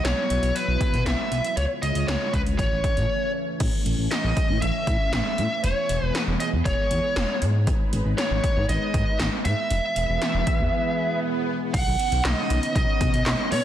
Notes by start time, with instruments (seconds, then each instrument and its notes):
Already playing: string machine F#3 B3 E4
0.04 analog synth bass B1, lead electric guitar C#5, snare, closed hi-hat
0.30 analog synth bass B1, closed hi-hat
0.43 analog synth bass B1, closed hi-hat
0.55 lead electric guitar B4, closed hi-hat
0.68 analog synth bass B1
0.81 kick, closed hi-hat
0.93 analog synth bass B2, closed hi-hat
1.06 analog synth bass B1, lead electric guitar E5, snare, closed hi-hat
1.31 analog synth bass B1, closed hi-hat
1.45 closed hi-hat
1.57 analog synth bass C#2, string machine C#3 G#3 F4, lead electric guitar C#5, closed hi-hat
1.82 analog synth bass C#2, lead electric guitar D#5, closed hi-hat
1.95 analog synth bass C#2, closed hi-hat
2.08 analog synth bass C#2, lead electric guitar C#5, snare, closed hi-hat
2.33 analog synth bass C#2, lead electric guitar B4, kick, closed hi-hat
2.46 analog synth bass C#2, closed hi-hat
2.58 analog synth bass A1, string machine E3 A3 C#4, lead electric guitar C#5, kick, closed hi-hat
2.71 analog synth bass A1
2.84 kick, closed hi-hat
2.97 analog synth bass A2, closed hi-hat
3.60 analog synth bass A1, string machine E3 A3 C#4, kick, closed hi-hat, crash
3.86 analog synth bass A1, closed hi-hat
3.98 analog synth bass A1
4.11 lead electric guitar D#5, snare, closed hi-hat
4.24 analog synth bass A1
4.37 kick, closed hi-hat
4.49 analog synth bass A2
4.62 analog synth bass A1, lead electric guitar E5, closed hi-hat
4.87 analog synth bass A2, kick, closed hi-hat
5.13 analog synth bass A1, lead electric guitar E5, snare, closed hi-hat
5.38 analog synth bass A2, closed hi-hat
5.64 analog synth bass E1, string machine B3 G#4, lead electric guitar C#5, closed hi-hat
5.89 analog synth bass E1, closed hi-hat
6.02 analog synth bass E1, lead electric guitar B4
6.15 lead electric guitar B4, snare, closed hi-hat
6.27 analog synth bass E1
6.40 lead electric guitar D#5, closed hi-hat
6.53 analog synth bass E2
6.65 analog synth bass E1, lead electric guitar C#5, kick, closed hi-hat
6.91 analog synth bass E2, closed hi-hat
7.16 analog synth bass E1, snare, closed hi-hat
7.42 analog synth bass G#2, string machine G#3 D#4 B4, closed hi-hat
7.67 kick, closed hi-hat
7.93 analog synth bass G#1, closed hi-hat
8.05 analog synth bass G#1
8.18 lead electric guitar C#5, snare, closed hi-hat
8.31 analog synth bass G#1
8.44 kick, closed hi-hat
8.56 analog synth bass G#2
8.69 analog synth bass G#1, lead electric guitar D#5, closed hi-hat
8.94 analog synth bass G#2, kick, closed hi-hat
9.19 analog synth bass G#1, lead electric guitar D#5, snare, closed hi-hat
9.45 analog synth bass G#2, lead electric guitar E5, closed hi-hat
9.70 analog synth bass E1, string machine E3 B3 G#4, closed hi-hat, swell
9.96 analog synth bass E1, closed hi-hat
10.09 analog synth bass E1
10.22 snare, closed hi-hat
10.34 analog synth bass E1
10.47 kick, closed hi-hat
10.60 analog synth bass E2
11.74 analog synth bass B1, string machine B3 C#4 D#4, lead electric guitar F#5, kick, closed hi-hat, crash
11.87 analog synth bass B1
11.99 closed hi-hat
12.12 analog synth bass B1, closed hi-hat
12.25 analog synth bass B1, lead electric guitar D#5, snare, clap, closed hi-hat
12.50 analog synth bass B1, closed hi-hat
12.63 closed hi-hat
12.76 analog synth bass B1, lead electric guitar D#5, kick, closed hi-hat
13.01 analog synth bass B1, kick, closed hi-hat
13.14 analog synth bass B1, closed hi-hat
13.26 analog synth bass B1, snare, clap, closed hi-hat
13.52 analog synth bass B2, lead electric guitar C#5, open hi-hat